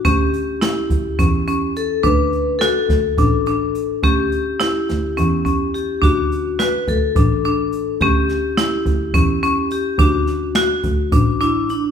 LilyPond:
<<
  \new Staff \with { instrumentName = "Vibraphone" } { \time 7/8 \key d \major \tempo 4 = 106 g'2. a'8 | b'4 a'2~ a'8 | g'2. g'8 | fis'4 b'8 a'2 |
g'2. g'8 | fis'2~ fis'8 e'8 d'8 | }
  \new Staff \with { instrumentName = "Marimba" } { \time 7/8 \key d \major cis'4 e'4 cis'8 cis'4 | d'4 fis'4 d'8 d'4 | cis'4 e'4 cis'8 cis'4 | d'4 fis'4 d'8 d'4 |
cis'4 e'4 cis'8 cis'4 | d'4 fis'4 d'8 d'4 | }
  \new Staff \with { instrumentName = "Double bass" } { \clef bass \time 7/8 \key d \major d,8 r4 d,8 e,4. | d,4. d,8 a,,4. | d,8 r4 d,8 e,4. | d,4. d,8 a,,4. |
d,8 r4 d,8 e,4. | d,4. d,8 a,,4. | }
  \new DrumStaff \with { instrumentName = "Drums" } \drummode { \time 7/8 <hh bd>8 hh8 <hh sn>8 <hh bd>8 <hh bd>8 hh8 hh8 | <hh bd>8 hh8 <hh sn>8 <hh bd sn>8 <hh bd>8 hh8 hh8 | <hh bd>8 hh8 <hh sn>8 <hh sn>8 hh8 <hh bd>8 hh8 | <hh bd>8 hh8 <hh sn>8 <hh bd>8 <hh bd>8 hh8 hh8 |
<hh bd>8 <hh sn>8 <hh sn>8 <hh bd>8 <hh bd>8 hh8 hh8 | <hh bd>8 <hh sn>8 <hh sn>8 <hh bd>8 <hh bd>8 hh8 hh8 | }
>>